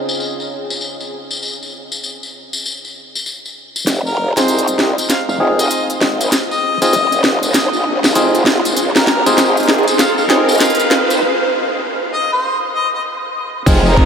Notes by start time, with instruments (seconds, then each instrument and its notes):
Already playing: clav C#3 C4 D#4 F4 G#4
0.09 tambourine
0.20 tambourine
0.40 tambourine
0.70 tambourine
0.81 tambourine
1.00 tambourine
1.31 tambourine
1.43 tambourine
1.63 tambourine
1.92 tambourine
2.04 tambourine
2.23 tambourine
2.53 tambourine
2.66 tambourine
2.85 tambourine
3.15 tambourine
3.26 tambourine
3.46 tambourine
3.76 tambourine
3.87 wobble bass F1, snare, closed hi-hat, tambourine, riser
4.06 harmonica A#4, tambourine
4.37 wobble bass C2, clav C4 D#4 F4 G#4, harmonica C5, snare, closed hi-hat, tambourine
4.48 closed hi-hat, tambourine
4.59 closed hi-hat
4.68 closed hi-hat, tambourine
4.79 snare
4.98 closed hi-hat, tambourine
5.09 harmonica F5, snare, closed hi-hat, tambourine
5.29 wobble bass F1, harmonica F5, tambourine
5.40 clav C4 D#4 F4 G#4
5.59 harmonica D#5, closed hi-hat, tambourine
5.71 closed hi-hat, tambourine
5.90 closed hi-hat, tambourine
6.01 wobble bass G#1, snare
6.21 closed hi-hat, tambourine
6.32 snare, closed hi-hat, tambourine
6.51 harmonica D#5, tambourine
6.82 clav C4 D#4 F4 G#4, harmonica D#5, closed hi-hat, tambourine
6.93 wobble bass F1, closed hi-hat, tambourine
7.12 closed hi-hat, tambourine
7.24 snare
7.43 closed hi-hat, tambourine
7.54 wobble bass A#1, snare, closed hi-hat, tambourine
7.73 tambourine
8.04 snare, tambourine
8.15 wobble bass F1, clav C4 D#4 F4 G#4, closed hi-hat, tambourine
8.35 closed hi-hat, tambourine
8.46 wobble bass F1, snare
8.65 wobble bass G#1, closed hi-hat, tambourine
8.76 wobble bass C#2, closed hi-hat, tambourine
8.96 harmonica A#4, snare, tambourine
9.07 snare
9.26 wobble bass G#1, clav C4 D#4 F4 G#4, harmonica C5, closed hi-hat, tambourine
9.38 snare, closed hi-hat, tambourine
9.57 closed hi-hat, tambourine
9.60 closed hi-hat
9.63 closed hi-hat
9.65 snare, closed hi-hat
9.73 closed hi-hat
9.78 closed hi-hat
9.83 closed hi-hat
9.87 closed hi-hat, tambourine
9.99 harmonica F5, snare, closed hi-hat, tambourine
10.18 wobble bass C#2, harmonica F5, tambourine
10.30 clav C4 D#4 F4 G#4, snare
10.49 closed hi-hat, tambourine
10.52 closed hi-hat
10.55 closed hi-hat
10.58 harmonica F5, snare, closed hi-hat, tambourine
10.60 closed hi-hat
10.70 closed hi-hat
10.75 closed hi-hat
10.79 closed hi-hat, tambourine
10.91 wobble bass F2, snare
11.10 closed hi-hat, tambourine
12.13 harmonica D#5
12.32 harmonica C5
12.75 harmonica D#5
12.94 harmonica D#5
13.66 wobble bass F1, clav C4 D#4 F4 G#4, kick, closed hi-hat, crash, tambourine, downlifter
13.86 harmonica A#4, tambourine
13.97 kick